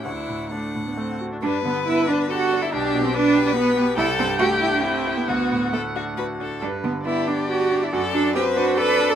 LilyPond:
<<
  \new Staff \with { instrumentName = "Violin" } { \time 3/4 \key g \major \tempo 4 = 138 fis''4 fis''4. r8 | b'2 a'4 | g'4 b'2 | a'4 g'4 e'4 |
fis'4 a'8 fis'8 b'8 a'8 | r4 g'2 | a'4 b'4 a'4 | }
  \new Staff \with { instrumentName = "Cello" } { \time 3/4 \key g \major e'4 d'4 r4 | d'8 b8 e'8 d'8 fis'8. e'16 | d'8. c'16 d'8. d'16 b4 | e'8 c'8 fis'8 e'16 d'16 c'8. b16 |
b4 a4 r4 | d'8 b8 e'8 d'8 fis'8. e'16 | fis'8 d'8 g'8 fis'8 b'8. a'16 | }
  \new Staff \with { instrumentName = "Viola" } { \time 3/4 \key g \major d'4 a8. b16 c'8. d'16 | d'8 b8 e'8 d'8 fis'8. e'16 | d'8. c'16 d'8. d'16 b4 | g''2. |
fis''2~ fis''8 r8 | b'4 d''2~ | d''4 c''4 d''4 | }
  \new Staff \with { instrumentName = "Grand piano" } { \time 3/4 \key g \major d,8 a,8 d'8 a,8 a8 fis'8 | g,8 d8 b8 d'8 g'8 d'8 | b,,8 b,8 b8 g'8 b8 g'8 | c,8 g,8 a8 e'8 g'8 e'8 |
d,8 a,8 a8 d'8 fis'8 d'8 | g,8 d8 b8 d'8 g'8 d'8 | fis,8 fis8 c'8 d'8 a'8 d'8 | }
>>